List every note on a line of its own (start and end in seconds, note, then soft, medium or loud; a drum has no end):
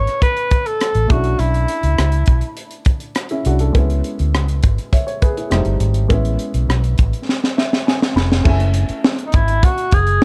0.00 1.05 A3 medium
0.00 1.06 B3 soft
0.00 1.06 C#4 soft
0.00 1.07 E4 medium
0.00 0.22 C#5 medium
0.07 cross-stick soft
0.07 closed hi-hat soft
0.22 0.68 B4 loud
0.22 kick medium
0.22 closed hi-hat medium
0.37 closed hi-hat soft
0.51 kick medium
0.51 closed hi-hat medium
0.66 1.13 A4 medium
0.66 closed hi-hat soft
0.81 cross-stick medium
0.81 closed hi-hat medium
0.95 1.08 A1 medium
0.95 closed hi-hat soft
1.07 1.35 B1 loud
1.07 3.40 A3 soft
1.07 3.11 C#4 soft
1.07 3.12 D4 medium
1.07 3.13 E4 medium
1.07 kick loud
1.07 closed hi-hat medium
1.11 1.41 F#4 medium
1.24 closed hi-hat medium
1.39 1.65 B1 medium
1.39 2.58 E4 medium
1.39 closed hi-hat medium
1.54 closed hi-hat soft
1.68 closed hi-hat medium
1.83 1.96 C#2 medium
1.83 closed hi-hat soft
1.98 2.24 C#2 medium
1.98 cross-stick loud
1.98 closed hi-hat medium
2.12 closed hi-hat soft
2.26 2.40 B1 medium
2.26 kick medium
2.26 closed hi-hat medium
2.41 closed hi-hat soft
2.57 closed hi-hat medium
2.71 closed hi-hat soft
2.85 kick medium
2.85 closed hi-hat medium
3.00 closed hi-hat soft
3.15 cross-stick medium
3.15 closed hi-hat medium
3.29 3.45 C#4 soft
3.29 3.45 E4 medium
3.29 closed hi-hat soft
3.45 3.71 C2 medium
3.45 3.60 D4 soft
3.45 3.60 F#4 medium
3.45 closed hi-hat medium
3.59 3.89 F#4 soft
3.59 3.88 A4 medium
3.59 closed hi-hat medium
3.73 4.00 C#2 medium
3.73 5.47 G#3 medium
3.73 5.48 B3 medium
3.73 5.48 C#4 medium
3.73 kick medium
3.73 closed hi-hat medium
3.77 4.91 E4 medium
3.90 closed hi-hat soft
4.04 closed hi-hat medium
4.19 4.34 D2 medium
4.19 closed hi-hat soft
4.34 4.59 C#2 medium
4.34 cross-stick loud
4.34 closed hi-hat medium
4.48 closed hi-hat medium
4.63 4.76 G#1 medium
4.63 kick medium
4.63 closed hi-hat medium
4.78 closed hi-hat soft
4.92 5.05 C#5 soft
4.92 5.07 E5 soft
4.92 kick medium
4.92 closed hi-hat medium
5.07 5.21 C#5 medium
5.07 closed hi-hat soft
5.22 5.36 G#4 medium
5.22 5.36 B4 medium
5.22 kick medium
5.22 closed hi-hat medium
5.37 5.65 E4 medium
5.37 5.65 G#4 medium
5.37 closed hi-hat soft
5.50 5.64 F1 medium
5.50 6.10 G3 medium
5.50 6.10 A3 medium
5.50 6.10 C4 medium
5.50 6.11 D#4 medium
5.50 cross-stick loud
5.50 closed hi-hat medium
5.65 5.79 G1 medium
5.65 closed hi-hat soft
5.80 6.06 G#1 medium
5.80 closed hi-hat medium
5.94 closed hi-hat medium
6.08 6.36 A1 medium
6.08 8.41 G#3 medium
6.08 8.41 B3 medium
6.08 8.42 C#4 medium
6.08 8.43 E4 medium
6.08 kick medium
6.08 closed hi-hat medium
6.25 closed hi-hat soft
6.39 closed hi-hat medium
6.54 6.67 B1 medium
6.54 closed hi-hat soft
6.69 6.94 B1 medium
6.69 cross-stick loud
6.69 closed hi-hat medium
6.84 closed hi-hat soft
6.98 7.11 A1 medium
6.98 kick medium
6.98 closed hi-hat medium
7.13 closed hi-hat soft
7.29 snare soft
7.44 snare soft
7.57 7.84 E5 medium
7.57 snare medium
7.73 snare medium
7.87 8.14 G#5 medium
7.87 snare medium
8.02 snare medium
8.16 8.41 F1 medium
8.16 8.43 B5 medium
8.16 snare medium
8.32 snare medium
8.44 8.83 F#1 loud
8.44 10.24 A3 medium
8.44 10.24 C#4 medium
8.44 10.24 E4 medium
8.44 10.24 G#5 medium
8.44 kick medium
8.44 crash medium
8.60 closed hi-hat soft
8.74 closed hi-hat medium
8.89 closed hi-hat soft
9.04 snare loud
9.19 closed hi-hat medium
9.26 9.37 D#4 medium
9.32 9.59 G#1 medium
9.32 9.66 E4 medium
9.32 kick medium
9.32 closed hi-hat medium
9.48 closed hi-hat soft
9.63 9.95 F#4 medium
9.63 kick medium
9.63 closed hi-hat medium
9.78 closed hi-hat soft
9.91 10.18 F#1 medium
9.91 10.24 G#4 loud
9.91 kick medium
9.91 closed hi-hat medium
10.07 closed hi-hat soft